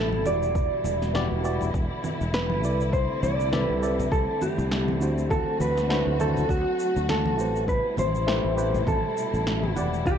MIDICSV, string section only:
0, 0, Header, 1, 2, 480
1, 0, Start_track
1, 0, Key_signature, 1, "minor"
1, 0, Tempo, 594059
1, 448, Time_signature, 4, 2, 24, 8
1, 8226, End_track
2, 0, Start_track
2, 0, Title_t, "String section"
2, 0, Program_c, 0, 48
2, 0, Note_on_c, 0, 47, 76
2, 0, Note_on_c, 0, 48, 84
2, 0, Note_on_c, 0, 55, 82
2, 0, Note_on_c, 0, 57, 75
2, 0, Note_on_c, 0, 64, 92
2, 432, Note_off_c, 0, 48, 0
2, 432, Note_off_c, 0, 64, 0
2, 433, Note_off_c, 0, 57, 0
2, 450, Note_on_c, 0, 64, 93
2, 451, Note_on_c, 0, 52, 82
2, 452, Note_on_c, 0, 50, 84
2, 2339, Note_off_c, 0, 55, 0
2, 2340, Note_off_c, 0, 47, 0
2, 2350, Note_off_c, 0, 52, 0
2, 2370, Note_on_c, 0, 55, 80
2, 2370, Note_on_c, 0, 57, 76
2, 2370, Note_on_c, 0, 60, 72
2, 4257, Note_off_c, 0, 64, 0
2, 4270, Note_off_c, 0, 55, 0
2, 4288, Note_on_c, 0, 54, 77
2, 4288, Note_on_c, 0, 66, 87
2, 6177, Note_off_c, 0, 57, 0
2, 6177, Note_off_c, 0, 60, 0
2, 6178, Note_off_c, 0, 50, 0
2, 6189, Note_off_c, 0, 54, 0
2, 6189, Note_off_c, 0, 66, 0
2, 6205, Note_on_c, 0, 64, 91
2, 6206, Note_on_c, 0, 47, 73
2, 6206, Note_on_c, 0, 48, 86
2, 6206, Note_on_c, 0, 57, 79
2, 6207, Note_on_c, 0, 55, 75
2, 8108, Note_off_c, 0, 48, 0
2, 8108, Note_off_c, 0, 57, 0
2, 8109, Note_off_c, 0, 55, 0
2, 8125, Note_on_c, 0, 50, 81
2, 8126, Note_on_c, 0, 55, 78
2, 8127, Note_on_c, 0, 52, 82
2, 8226, Note_off_c, 0, 47, 0
2, 8226, Note_off_c, 0, 50, 0
2, 8226, Note_off_c, 0, 52, 0
2, 8226, Note_off_c, 0, 55, 0
2, 8226, Note_off_c, 0, 64, 0
2, 8226, End_track
0, 0, End_of_file